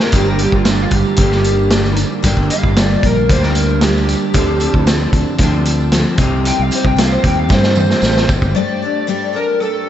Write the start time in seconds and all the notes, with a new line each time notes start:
Already playing: G3 C4 D#4 G4
0.00 A#4, snare
0.12 G1 G2 D3 G3 A#3 D4 G4, kick, closed hi-hat, tambourine
0.16 G4
0.27 A#4, tambourine
0.39 A#3 D4 G4, closed hi-hat, tambourine
0.43 G3 G4
0.52 G1 F4, kick
0.65 G3 A#3, snare, closed hi-hat, tambourine
0.69 D4 G4
0.82 F4
0.91 G1, kick, closed hi-hat
0.95 G4
1.05 tambourine
1.16 G1 G2 D3 G3 A#3, kick, closed hi-hat, tambourine
1.21 D4 G4
1.31 snare, tambourine
1.44 closed hi-hat, tambourine
1.59 tambourine
1.70 G3 A#3 D4 G4, snare, closed hi-hat, tambourine
1.84 snare
1.96 closed hi-hat, tambourine
2.23 G1 G2 D3 G3 A#3 D4 G4, kick, closed hi-hat, tambourine
2.37 G1, kick, tambourine
2.50 G3 A#3 D4 G4 F5, closed hi-hat, tambourine
2.63 G1, kick
2.76 G3 A#3 D4 G4 D5, snare, closed hi-hat, tambourine
2.91 tambourine
3.03 A#1 A#4, kick, closed hi-hat
3.17 tambourine
3.29 D2 G2 D3 G3 A#3 D4 G4 C5, kick, closed hi-hat, tambourine
3.43 A#4, snare, tambourine
3.55 closed hi-hat, tambourine
3.69 tambourine
3.81 G3 A#3 G4, snare, closed hi-hat, tambourine
3.85 D4 G4
3.96 snare
4.09 closed hi-hat, tambourine
4.34 D2 D3 F3 C4 D4 A4, kick, closed hi-hat, tambourine
4.48 tambourine
4.60 D4 A4, closed hi-hat, tambourine
4.65 C4
4.74 D2, kick
4.87 F3 C4 D4, snare, closed hi-hat, tambourine
4.91 A4
5.00 tambourine
5.13 D2 D4 A4, kick, closed hi-hat
5.18 C4
5.26 tambourine
5.38 D2 D3 F3, kick, closed hi-hat, tambourine
5.43 C4 D4 A4
5.52 tambourine
5.65 closed hi-hat, tambourine
5.80 tambourine
5.92 F3 C4 D4, snare, closed hi-hat, tambourine
5.96 A4
6.17 C2 C3 G3 D#4 G4, kick, closed hi-hat, tambourine
6.22 C3 G3 C4
6.45 G5, closed hi-hat, tambourine
6.59 C2 F5
6.71 C4 D#4 G4, closed hi-hat, tambourine
6.75 C5
6.85 C2 G5, kick, tambourine
6.97 G3 C4 D#4 G4 F5, snare, closed hi-hat, tambourine
7.11 C5, tambourine
7.23 D#2 C3 G3 C4 D#4 G4, kick, closed hi-hat, tambourine
7.27 G5
7.39 F5
7.49 G2 C3 G3 C4 D#4 G4 C5, kick, snare, tambourine
7.63 snare, tambourine
7.75 C5, mid tom, tambourine
7.90 snare
8.02 A1 G3 C4 D#4 G4, snare, tambourine
8.17 snare
8.28 G1 C4 D#4 G4, kick, tambourine
8.42 kick, tambourine
8.55 G2 G3 A3 D4 G4 A4 D5
8.82 A3 D4 G4 A4
9.07 G2 G3 A3 D4 G4 A4
9.33 A3 D4 G4 A4 A#4
9.60 A3 D4 G4 A4